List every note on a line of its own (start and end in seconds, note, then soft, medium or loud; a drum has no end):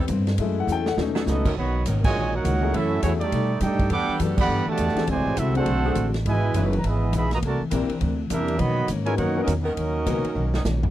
0.00 0.35 G3 soft
0.00 0.36 B3 medium
0.00 0.36 C4 medium
0.08 0.37 G2 loud
0.08 0.28 A2 medium
0.08 0.29 G3 medium
0.08 0.30 C4 medium
0.08 kick soft
0.08 hi-hat pedal medium
0.08 ride medium
0.12 0.30 E4 medium
0.27 snare medium
0.27 ride medium
0.38 0.67 F#2 medium
0.38 0.58 F#3 medium
0.38 0.95 G#3 medium
0.38 0.95 A3 medium
0.38 0.59 C#4 medium
0.38 0.95 E4 medium
0.38 0.59 E4 medium
0.38 kick soft
0.38 ride medium
0.42 0.60 A4 medium
0.60 0.69 F#5 medium
0.67 0.96 E2 loud
0.67 0.87 F#3 medium
0.67 0.88 C#4 medium
0.67 0.88 E4 medium
0.67 0.88 A4 medium
0.67 hi-hat pedal medium
0.72 0.88 G5 medium
0.86 0.94 F#5 medium
0.86 snare medium
0.97 1.25 D#2 medium
0.97 1.17 B2 medium
0.97 1.18 F#3 medium
0.97 1.43 A3 medium
0.97 1.18 A3 medium
0.97 1.43 C#4 medium
0.97 1.44 D#4 medium
0.97 snare medium
1.02 1.19 D#4 medium
1.15 1.23 F#3 loud
1.15 1.23 B3 loud
1.15 1.23 D#4 loud
1.15 1.23 A4 loud
1.15 snare medium
1.26 1.55 C#2 loud
1.26 1.45 B2 medium
1.26 1.46 F#3 medium
1.26 1.55 F#3 medium
1.26 1.46 A3 medium
1.26 1.54 A3 medium
1.26 1.54 B3 medium
1.26 1.54 D#4 medium
1.26 1.47 D#4 medium
1.26 1.54 F#4 medium
1.26 1.54 A4 medium
1.26 1.54 D#5 medium
1.26 snare medium
1.26 hi-hat pedal medium
1.45 1.53 D#3 loud
1.45 1.53 B3 medium
1.45 1.53 C#4 medium
1.45 1.53 A#4 loud
1.45 kick medium
1.45 crash medium
1.57 1.84 B1 medium
1.57 1.75 B2 soft
1.57 1.84 D#3 medium
1.57 1.76 D#3 medium
1.57 1.84 F#3 medium
1.57 1.76 A#3 medium
1.57 1.84 B3 medium
1.57 1.77 C#4 medium
1.57 1.84 F#4 medium
1.57 1.83 C#5 medium
1.57 1.84 D#5 medium
1.57 1.84 B5 medium
1.57 kick soft
1.86 2.13 G#1 medium
1.86 2.05 B2 medium
1.86 2.30 D#3 medium
1.86 2.05 D#3 medium
1.86 2.05 A#3 medium
1.86 2.30 B3 medium
1.86 2.29 C#4 medium
1.86 2.06 C#4 medium
1.86 2.30 A#4 loud
1.86 kick soft
1.86 hi-hat pedal medium
1.86 ride medium
2.04 2.32 A#2 medium
2.04 2.32 D#3 medium
2.04 2.32 G#3 medium
2.04 2.31 F#4 medium
2.04 2.31 C#5 loud
2.04 2.31 D#5 loud
2.04 2.31 G#5 loud
2.04 kick loud
2.04 crash loud
2.13 2.42 A#1 medium
2.13 2.34 B2 medium
2.13 2.34 D#3 medium
2.13 2.35 A#3 medium
2.18 2.35 C#4 medium
2.34 2.74 A#3 medium
2.34 2.74 D#4 medium
2.34 2.74 F#4 medium
2.34 2.74 A#4 medium
2.34 2.74 C#5 medium
2.34 2.74 F#5 loud
2.44 2.72 C#2 loud
2.44 2.63 B2 medium
2.44 2.63 D#3 medium
2.44 2.63 A#3 medium
2.44 2.64 C#4 medium
2.44 kick soft
2.44 hi-hat pedal medium
2.44 ride medium
2.62 2.72 A3 medium
2.62 2.72 C#4 medium
2.62 2.72 E4 medium
2.62 2.72 F#4 medium
2.62 2.72 G#4 medium
2.72 2.92 F#2 medium
2.72 3.02 F#2 medium
2.72 2.92 E3 medium
2.72 3.32 F#3 loud
2.72 3.02 A3 medium
2.72 2.93 A3 medium
2.72 3.02 C#4 medium
2.72 3.32 C#4 medium
2.72 3.03 C#4 medium
2.72 2.93 C#4 medium
2.72 3.03 E4 medium
2.72 3.32 E4 loud
2.72 3.02 F#4 medium
2.72 3.32 A4 loud
2.72 3.04 A4 medium
2.72 3.03 E5 loud
2.72 kick soft
2.72 ride medium
3.02 3.31 E2 medium
3.02 3.21 F#2 medium
3.02 3.22 E3 medium
3.02 3.11 E3 medium
3.02 3.11 A3 medium
3.02 3.19 A3 medium
3.02 3.22 A3 medium
3.02 3.11 C#4 medium
3.02 3.19 C#4 medium
3.02 3.23 C#4 medium
3.02 3.19 E4 medium
3.02 3.11 E4 medium
3.02 3.11 F#4 medium
3.02 3.19 F#4 medium
3.02 3.19 G#4 medium
3.02 3.11 C#5 loud
3.02 kick soft
3.02 hi-hat pedal medium
3.02 ride medium
3.19 3.59 G3 medium
3.19 3.58 A3 medium
3.19 3.59 A3 medium
3.19 3.58 D#4 medium
3.19 3.58 G4 medium
3.19 3.57 D5 loud
3.19 ride medium
3.32 3.60 B2 medium
3.32 3.51 B2 medium
3.32 3.52 G3 medium
3.32 3.52 A3 medium
3.32 3.53 D#4 medium
3.32 kick soft
3.32 ride medium
3.60 3.89 G2 loud
3.60 3.80 B2 medium
3.60 3.80 G3 medium
3.60 3.81 A3 medium
3.60 3.91 A3 medium
3.60 3.91 D#4 loud
3.60 3.91 D#4 medium
3.60 3.81 D#4 medium
3.60 3.91 G4 medium
3.60 3.90 A4 medium
3.60 3.91 D5 medium
3.60 3.90 G5 loud
3.60 kick soft
3.60 hi-hat pedal medium
3.60 ride medium
3.79 kick medium
3.79 ride medium
3.89 4.07 E2 medium
3.89 4.09 E3 soft
3.89 4.71 G3 loud
3.89 4.19 G3 loud
3.89 4.10 A3 medium
3.89 4.18 B3 loud
3.89 4.71 D4 loud
3.89 4.18 D4 loud
3.89 4.10 D4 medium
3.89 4.72 F#4 loud
3.89 4.11 G4 medium
3.89 4.71 A4 loud
3.89 4.18 B4 medium
3.89 4.18 F#5 medium
3.89 4.18 G5 loud
3.89 4.18 D6 loud
3.89 kick soft
3.89 ride medium
4.08 muted upright bass stroke soft
4.19 4.47 F#2 medium
4.19 4.39 E3 medium
4.19 4.39 A3 medium
4.19 4.36 B3 medium
4.19 4.36 D4 medium
4.19 4.39 D4 medium
4.19 4.36 F#4 medium
4.19 4.36 G4 medium
4.19 4.40 G4 medium
4.19 4.36 A4 medium
4.19 kick soft
4.19 hi-hat pedal medium
4.19 ride medium
4.37 4.65 D3 loud
4.37 4.65 G3 medium
4.37 4.65 B3 medium
4.37 4.66 G4 loud
4.37 4.66 D5 loud
4.37 4.66 F#5 loud
4.37 4.66 B5 loud
4.37 kick loud
4.37 crash loud
4.48 4.65 G2 medium
4.48 4.67 E3 medium
4.48 4.68 A3 medium
4.48 4.69 D4 medium
4.48 4.69 G4 medium
4.66 5.04 B2 medium
4.66 5.04 D3 medium
4.66 5.05 A3 loud
4.66 5.06 G4 loud
4.66 5.06 D5 loud
4.66 5.06 F#5 loud
4.66 5.06 A5 loud
4.66 muted upright bass stroke soft
4.77 4.95 E2 loud
4.77 4.98 E3 medium
4.77 4.98 A3 medium
4.77 4.98 D4 medium
4.77 4.99 G4 medium
4.77 kick soft
4.77 hi-hat pedal medium
4.77 ride medium
4.88 snare soft
4.95 5.06 C4 medium
4.95 5.06 D4 medium
4.95 5.06 F#4 medium
4.95 5.06 G#4 medium
4.95 5.06 A4 medium
4.95 muted upright bass stroke soft
4.95 snare medium
4.95 ride medium
5.07 5.17 D2 medium
5.07 5.37 A2 medium
5.07 5.37 C3 loud
5.07 5.26 D3 medium
5.07 5.27 G#3 soft
5.07 5.37 G#3 medium
5.07 5.27 C4 medium
5.07 5.37 F#4 loud
5.07 5.28 F#4 medium
5.07 5.38 C5 medium
5.07 5.38 D5 medium
5.07 5.38 G#5 loud
5.07 kick soft
5.07 ride medium
5.16 5.25 C2 medium
5.26 5.35 A1 medium
5.35 5.65 C2 medium
5.35 5.55 D3 medium
5.35 5.56 G#3 medium
5.35 5.56 C4 medium
5.35 5.55 C4 medium
5.35 5.56 E4 medium
5.35 5.56 F#4 medium
5.35 5.55 F#4 medium
5.35 5.55 A4 medium
5.35 5.55 E5 loud
5.35 kick soft
5.35 hi-hat pedal medium
5.35 ride medium
5.55 6.10 A3 medium
5.55 6.09 C4 medium
5.55 5.65 C4 medium
5.55 5.65 D4 medium
5.55 6.11 D4 medium
5.55 6.09 F#4 medium
5.55 5.65 F#4 medium
5.55 5.66 G#4 medium
5.55 5.66 A4 medium
5.55 6.11 A4 loud
5.55 6.10 C5 medium
5.55 6.11 F#5 loud
5.55 ride medium
5.64 5.94 B1 medium
5.64 5.84 D3 medium
5.64 5.85 G#3 medium
5.64 5.86 C4 medium
5.64 5.86 F#4 medium
5.64 kick soft
5.64 ride medium
5.84 5.92 F#3 medium
5.84 5.94 C4 medium
5.84 5.92 C4 medium
5.84 5.92 D4 medium
5.84 5.94 D4 medium
5.84 5.95 F#4 medium
5.84 5.92 G#4 medium
5.84 5.95 G#4 medium
5.84 5.95 A4 medium
5.94 6.24 A1 loud
5.94 6.14 D3 medium
5.94 6.14 G#3 medium
5.94 6.15 C4 medium
5.94 6.15 F#4 medium
5.94 kick soft
5.94 hi-hat pedal medium
5.94 ride medium
6.14 snare soft
6.14 ride medium
6.25 6.53 G#1 medium
6.25 6.70 B2 medium
6.25 6.44 C#3 soft
6.25 6.44 E3 soft
6.25 6.70 E3 loud
6.25 6.70 G#3 medium
6.25 6.45 B3 medium
6.25 6.45 D#4 medium
6.25 6.69 E4 medium
6.25 6.69 B4 medium
6.25 6.69 D#5 medium
6.25 6.69 G#5 loud
6.25 kick soft
6.25 ride medium
6.54 6.83 F#1 medium
6.54 6.73 C#3 medium
6.54 6.73 E3 medium
6.54 6.98 E3 loud
6.54 6.74 B3 medium
6.54 6.98 C#4 medium
6.54 6.71 C#4 medium
6.54 6.98 D#4 loud
6.54 6.71 D#4 medium
6.54 6.74 D#4 medium
6.54 6.71 E4 medium
6.54 6.71 G#4 medium
6.54 6.98 B4 loud
6.54 6.71 B4 medium
6.54 kick soft
6.54 hi-hat pedal medium
6.54 ride medium
6.73 ride medium
6.78 6.83 A#5 medium
6.83 7.12 G#1 medium
6.83 7.02 C#3 medium
6.83 7.03 E3 medium
6.83 7.03 B3 medium
6.83 7.04 D#4 medium
6.83 7.14 G#4 medium
6.83 7.14 D#5 medium
6.83 7.14 E5 medium
6.83 7.14 B5 medium
6.83 kick soft
6.83 ride medium
6.87 7.14 E3 medium
6.87 7.14 G#3 medium
6.87 7.14 B3 medium
7.12 7.41 A#1 loud
7.12 7.31 C#3 medium
7.12 7.32 E3 medium
7.12 7.32 B3 medium
7.12 7.31 B3 medium
7.12 7.33 D#4 medium
7.12 7.31 B5 loud
7.12 kick soft
7.12 hi-hat pedal medium
7.12 ride medium
7.16 7.32 E3 medium
7.16 7.31 G#3 medium
7.16 7.31 G#4 medium
7.16 7.31 D#5 medium
7.16 7.31 E5 medium
7.31 7.38 A#3 medium
7.31 7.39 F#4 medium
7.31 7.38 B4 medium
7.31 7.38 D#5 medium
7.31 7.38 A#5 medium
7.31 snare soft
7.31 ride medium
7.42 7.59 C2 medium
7.42 7.61 C3 soft
7.42 7.62 E3 medium
7.42 7.60 A3 medium
7.42 7.62 A#3 medium
7.42 7.63 D4 medium
7.42 7.61 F#4 medium
7.42 7.61 A#4 medium
7.42 7.61 D5 medium
7.42 kick soft
7.42 ride medium
7.47 7.61 A5 medium
7.60 muted upright bass stroke soft
7.70 7.88 A#1 medium
7.70 7.90 C3 medium
7.70 8.14 E3 loud
7.70 7.91 E3 medium
7.70 7.91 A#3 medium
7.70 8.15 C4 medium
7.70 7.88 C4 medium
7.70 8.15 D4 medium
7.70 7.88 D4 medium
7.70 7.92 D4 medium
7.70 7.88 E4 medium
7.70 7.88 G4 medium
7.70 8.15 A#4 loud
7.70 7.88 A#4 medium
7.70 kick soft
7.70 hi-hat pedal medium
7.70 ride medium
7.89 muted upright bass stroke soft
7.89 ride medium
7.99 8.29 D2 loud
7.99 8.19 C3 medium
7.99 8.19 E3 medium
7.99 8.20 A#3 medium
7.99 8.21 D4 medium
7.99 kick soft
7.99 ride medium
8.30 8.58 E2 loud
8.30 8.49 C3 medium
8.30 8.49 E3 medium
8.30 8.57 G3 medium
8.30 8.50 A#3 medium
8.30 8.58 A#3 medium
8.30 8.58 D4 medium
8.30 8.50 D4 medium
8.30 8.58 E4 medium
8.30 8.58 G4 medium
8.30 8.58 A#4 medium
8.30 8.58 E5 medium
8.30 kick soft
8.30 hi-hat pedal medium
8.30 ride medium
8.48 ride medium
8.58 8.78 B2 medium
8.58 8.88 B2 medium
8.58 8.88 D#3 loud
8.58 8.79 D#3 medium
8.58 8.88 F#3 loud
8.58 8.79 A#3 medium
8.58 8.88 B3 loud
8.58 8.88 F#4 medium
8.58 8.88 C#5 medium
8.58 8.88 D#5 medium
8.58 8.88 B5 loud
8.58 kick soft
8.58 ride medium
8.62 8.80 C#4 medium
8.88 9.17 G#2 medium
8.88 9.08 B2 medium
8.88 9.08 D#3 medium
8.88 9.08 A#3 medium
8.88 9.09 C#4 medium
8.88 kick soft
8.88 hi-hat pedal medium
8.88 ride medium
9.05 9.16 G#3 loud
9.05 9.34 B3 medium
9.05 9.34 C#4 medium
9.05 9.34 D#4 medium
9.05 9.16 E4 loud
9.05 9.34 F#4 medium
9.05 9.15 A#4 medium
9.05 9.34 A#4 medium
9.05 9.15 C#5 medium
9.05 9.16 G#5 loud
9.05 ride medium
9.16 9.46 F#2 medium
9.16 9.36 B2 soft
9.16 9.37 D#3 medium
9.16 9.44 A#3 medium
9.16 9.38 A#3 medium
9.16 9.38 C#4 medium
9.16 9.44 D#4 medium
9.16 9.44 F#4 medium
9.16 9.42 A#4 medium
9.16 9.44 C#5 medium
9.16 9.44 F#5 loud
9.16 kick soft
9.16 ride medium
9.36 9.46 B3 medium
9.36 9.46 C#4 medium
9.36 9.46 D#4 medium
9.36 9.46 F#4 medium
9.36 9.47 A#4 medium
9.43 9.66 B2 medium
9.43 9.54 F#3 medium
9.43 9.54 A#3 medium
9.43 9.52 C#4 medium
9.43 9.54 D#4 medium
9.43 9.53 F#4 medium
9.43 9.52 A#4 medium
9.43 9.52 D#5 medium
9.47 9.75 E2 loud
9.47 9.67 D#3 medium
9.47 9.67 A#3 medium
9.47 9.67 C#4 medium
9.47 kick soft
9.47 hi-hat pedal medium
9.47 ride medium
9.62 9.73 D#3 loud
9.62 10.60 F#3 medium
9.62 10.59 A#3 medium
9.62 9.72 B3 loud
9.62 10.59 C#4 medium
9.62 9.73 C#4 medium
9.62 10.59 D#4 medium
9.62 10.59 F#4 medium
9.62 10.58 A#4 medium
9.62 9.73 A#4 loud
9.62 10.59 D#5 loud
9.77 10.05 D#2 medium
9.77 9.96 B2 medium
9.77 9.96 D#3 medium
9.77 9.97 A#3 medium
9.77 9.97 C#4 medium
9.77 kick soft
9.77 ride medium
10.05 10.23 C#2 medium
10.05 10.25 B2 medium
10.05 10.50 B2 medium
10.05 10.49 D#3 loud
10.05 10.26 D#3 medium
10.05 10.26 A#3 medium
10.05 10.22 B3 medium
10.05 10.22 C#4 medium
10.05 10.50 C#4 medium
10.05 10.26 C#4 medium
10.05 10.22 D#4 medium
10.05 10.22 F#4 medium
10.05 10.49 A#4 loud
10.05 10.22 A#4 medium
10.05 kick soft
10.05 hi-hat pedal medium
10.05 ride medium
10.24 muted upright bass stroke soft
10.24 ride medium
10.35 10.63 B1 medium
10.35 10.54 B2 medium
10.35 10.55 D#3 medium
10.35 10.55 A#3 medium
10.35 10.56 C#4 medium
10.54 10.62 D#3 loud
10.54 10.61 B3 medium
10.54 10.62 C#4 medium
10.54 10.62 D#4 loud
10.54 snare medium
10.65 10.90 A#1 loud
10.65 10.84 B2 medium
10.65 10.85 D#3 medium
10.65 10.85 A#3 medium
10.65 10.85 C#4 medium
10.65 snare medium
10.65 hi-hat pedal medium
10.83 floor tom medium